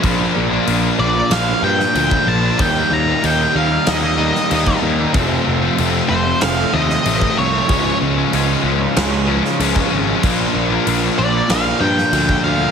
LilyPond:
<<
  \new Staff \with { instrumentName = "Lead electric guitar" } { \time 4/4 \key bes \major \tempo 4 = 94 r4. d''8 f''8 g''8 g''8 a''8 | g''8 bes''8 g''8 f''8 ees''4. r8 | r4. c''8 f''8 ees''4 des''8~ | des''8 r2. r8 |
r4. d''8 f''8 g''4 f''8 | }
  \new Staff \with { instrumentName = "Distorted electric guitar" } { \time 4/4 \key bes \major <bes, f bes d'>8 <bes, f bes d'>16 <f bes d'>16 <bes, f bes d'>8 <bes, f bes d'>16 <f bes d'>8 <f bes d'>16 <bes, f bes d'>16 <f bes d'>16 <bes, f bes d'>16 <f bes d'>8 <f bes d'>16 | <ees g bes ees'>8 <ees g bes ees'>16 <g bes ees'>16 <ees g bes ees'>8 <ees g bes ees'>16 <g bes ees'>8 <g bes ees'>16 <ees g bes ees'>16 <g bes ees'>16 <ees g bes ees'>16 <g bes ees'>8 <g bes ees'>16 | <f, c f a c'>8 <c f a c'>16 <f a c'>16 <f, c f a c'>8 <c f a c'>16 <f a c'>8 <f a c'>16 <c f a c'>16 <f a c'>16 <f, c f a c'>16 <f a c'>8 <f a c'>16 | <des f aes des'>8 <des f aes des'>16 <f aes des'>16 <des f aes des'>8 <des f aes des'>16 <f aes des'>8 <f aes des'>16 <des f aes des'>16 <f aes des'>16 <des f aes des'>16 <f aes des'>8 <f aes des'>16 |
<bes, f bes d'>8 <bes, f bes d'>16 <f bes d'>16 <bes, f bes d'>8 <bes, f bes d'>16 <f bes d'>8 <f bes d'>16 <bes, f bes d'>16 <f bes d'>16 <bes, f bes d'>16 <f bes d'>8 <f bes d'>16 | }
  \new Staff \with { instrumentName = "Overdriven electric guitar" } { \clef bass \time 4/4 \key bes \major <bes, f bes d'>8. <f bes d'>16 <bes, f bes d'>8 <bes, f bes d'>8. r16 <bes, f bes d'>8 <bes, f bes d'>8 <bes, f bes d'>16 <f bes d'>16 | <ees g bes ees'>8. <g bes ees'>16 <ees g bes ees'>8 <ees g bes ees'>8. r16 <ees g bes ees'>8 <ees g bes ees'>8 <ees g bes ees'>16 <g bes ees'>16 | <f, c f a c'>8. <f a c'>16 <f, c f a c'>8 <c f a c'>8. r16 <c f a c'>8 <f, c f a c'>8 <c f a c'>16 <f a c'>16 | <des f aes des'>8. <f aes des'>16 <des f aes des'>8 <des f aes des'>8. r16 <des f aes des'>8 <des f aes des'>8 <des f aes des'>16 <f aes des'>16 |
<bes, f bes d'>8. <f bes d'>16 <bes, f bes d'>8 <bes, f bes d'>8. r16 <bes, f bes d'>8 <bes, f bes d'>8 <bes, f bes d'>16 <f bes d'>16 | }
  \new Staff \with { instrumentName = "Overdriven electric guitar" } { \clef bass \time 4/4 \key bes \major <bes, f bes d'>2 <bes, f bes d'>2 | <ees g bes ees'>2 <ees g bes ees'>2 | <f, c f a c'>2 <f, c f a c'>2 | <des f aes des'>2 <des f aes des'>2 |
<bes, f bes d'>2 <bes, f bes d'>2 | }
  \new Staff \with { instrumentName = "Picked electric bass" } { \clef bass \time 4/4 \key bes \major bes,,8 bes,,8 bes,,8 bes,,8 bes,,8 g,8 d,8 bes,,8 | ees,8 ees,8 ees,8 ees,8 ees,4 ees,8 ees,8 | f,,8 f,,8 f,,8 f,,8 f,,8 ees,8 a,,8 c,8 | des,8 des,8 des,8 des,8 des,4 des,8 aes,,8 |
bes,,8 bes,,8 bes,,8 bes,,8 bes,,8 g,8 d,8 d,8 | }
  \new DrumStaff \with { instrumentName = "Drums" } \drummode { \time 4/4 <cymc bd>4 cymc4 <cymc sn>8. sn16 cymc16 bd8. | <cymc bd>4 cymc4 <cymc sn>8. sn16 cymc16 bd8. | <cymc bd>4 cymc4 <cymc sn>8. sn16 cymc16 bd8. | <cymc bd>4 cymc4 <cymc sn>8. sn16 cymc16 bd8. |
<cymc bd>4 cymc4 <cymc sn>8. sn16 cymc16 bd8. | }
>>